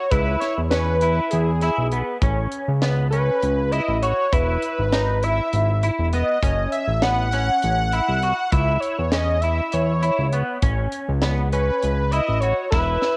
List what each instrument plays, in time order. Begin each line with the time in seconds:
Already playing: analog synth lead C#5
0.11 analog synth bass C#2, clean electric guitar E4, analog synth lead B4, kick, closed hi-hat
0.40 analog synth lead C#5, snare, closed hi-hat
0.58 analog synth bass E2
0.70 clean electric guitar C#4, analog synth lead B4, snare, closed hi-hat
1.01 clean electric guitar E4, closed hi-hat
1.30 analog synth bass E2, analog synth lead G#4, closed hi-hat
1.61 clean electric guitar E4, snare, closed hi-hat
1.78 analog synth bass B1
1.92 clean electric guitar B3, closed hi-hat
2.22 analog synth bass A1, clean electric guitar C#4, kick, closed hi-hat
2.52 closed hi-hat
2.68 analog synth bass C#2
2.82 clean electric guitar B3, snare, closed hi-hat
3.10 clean electric guitar C#4, analog synth lead B4, closed hi-hat
3.42 analog synth bass C#2, closed hi-hat
3.72 clean electric guitar E4, analog synth lead D#5, closed hi-hat
3.88 analog synth bass A1
4.02 clean electric guitar F#4, analog synth lead C#5, closed hi-hat
4.32 analog synth bass E1, clean electric guitar E4, analog synth lead B4, kick, closed hi-hat
4.62 closed hi-hat
4.79 analog synth bass G#1
4.92 clean electric guitar D#4, snare, closed hi-hat
5.23 clean electric guitar E4, analog synth lead E5, closed hi-hat
5.53 analog synth bass G#1, closed hi-hat
5.83 clean electric guitar E4, closed hi-hat
5.99 analog synth bass E1
6.13 clean electric guitar B3, analog synth lead D#5, closed hi-hat
6.43 analog synth bass F#1, clean electric guitar C#4, kick, closed hi-hat
6.72 analog synth lead E5, closed hi-hat
6.88 analog synth bass A1
7.02 clean electric guitar B3, analog synth lead F#5, snare, closed hi-hat
7.31 clean electric guitar C#4, analog synth lead F#5, snare, closed hi-hat
7.62 analog synth bass A1, closed hi-hat
7.93 clean electric guitar E4, closed hi-hat
8.09 analog synth bass C2
8.22 clean electric guitar F#4, closed hi-hat
8.51 analog synth bass C#2, clean electric guitar E4, analog synth lead E5, kick, closed hi-hat
8.80 analog synth lead C#5, closed hi-hat
8.99 analog synth bass E2
9.11 clean electric guitar C#4, analog synth lead D#5, snare, closed hi-hat
9.41 clean electric guitar E4, analog synth lead E5, closed hi-hat
9.72 analog synth bass E2, analog synth lead C#5, closed hi-hat
10.03 clean electric guitar E4, closed hi-hat
10.19 analog synth bass C#2
10.33 clean electric guitar B3, closed hi-hat
10.62 analog synth bass A1, clean electric guitar C#4, kick, closed hi-hat
10.92 closed hi-hat
11.09 analog synth bass C#2
11.22 clean electric guitar B3, snare, closed hi-hat
11.52 clean electric guitar C#4, analog synth lead B4, closed hi-hat
11.82 analog synth bass C#2, closed hi-hat
12.11 clean electric guitar E4, analog synth lead D#5, closed hi-hat
12.29 analog synth bass A1
12.40 clean electric guitar F#4, analog synth lead C#5, closed hi-hat
12.70 analog synth bass E1, clean electric guitar E4, analog synth lead B4, kick, snare
13.02 snare